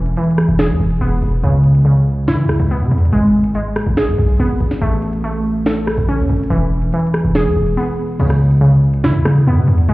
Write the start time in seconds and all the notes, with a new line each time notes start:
Already playing: E1 E3
0.06 closed hi-hat
0.17 E3, closed hi-hat
0.24 closed hi-hat
0.31 closed hi-hat
0.38 cross-stick, closed hi-hat
0.48 E1
0.59 G#4, snare, closed hi-hat
0.69 E2
0.80 E1
0.91 closed hi-hat
1.01 E1 B3
1.22 E1, closed hi-hat
1.43 C#2 C#3, closed hi-hat
1.64 closed hi-hat
1.75 closed hi-hat
1.85 C#3
2.28 E3 E4, snare, closed hi-hat
2.44 C#2
2.49 cross-stick
2.60 C#2, closed hi-hat
2.71 B3
2.81 C#3
2.91 E2, closed hi-hat
2.98 closed hi-hat
3.05 closed hi-hat
3.12 G#1 G#3, closed hi-hat
3.44 closed hi-hat
3.55 G#3, closed hi-hat
3.76 cross-stick, closed hi-hat
3.86 G#1
3.97 G#4, snare, closed hi-hat
4.08 G#2
4.18 B1
4.29 closed hi-hat
4.39 G#1 B3
4.60 G#1, closed hi-hat
4.71 snare
4.82 A1 A3, closed hi-hat
5.02 closed hi-hat
5.13 closed hi-hat
5.24 A3
5.66 A4, snare, closed hi-hat
5.87 cross-stick
5.98 A1, closed hi-hat
6.08 C#4
6.19 E2
6.29 G#1, closed hi-hat
6.36 closed hi-hat
6.44 closed hi-hat
6.50 E1 E3, closed hi-hat
6.82 closed hi-hat
6.93 E3, closed hi-hat
7.00 closed hi-hat
7.07 closed hi-hat
7.14 cross-stick, closed hi-hat
7.24 E1
7.35 G#4, snare, closed hi-hat
7.46 E2
7.56 E1
7.67 closed hi-hat
7.77 B3
8.20 C#2 C#3, closed hi-hat, crash
8.30 cross-stick
8.51 closed hi-hat
8.61 C#3
8.94 closed hi-hat
9.04 E3 E4, snare
9.15 C#2
9.25 C#3, cross-stick, closed hi-hat
9.36 closed hi-hat
9.46 D#2 B3
9.57 C#3
9.67 E2, closed hi-hat
9.78 closed hi-hat
9.89 G#1 G#3, closed hi-hat